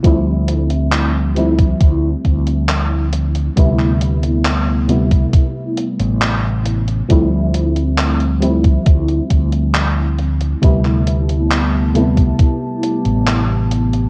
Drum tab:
HH |x-xxx-xxx-xxx-xx|x-xxx-xxx-xxx-xx|x-xxxxxxxxxxx-xx|x-xxx-xxx-xxx-xx|
CP |----x-------x---|-x--x-------x---|----x-------x---|-x--x-------x---|
BD |o------oo-o-----|o------oo-------|o------oo-o-----|o------oo-------|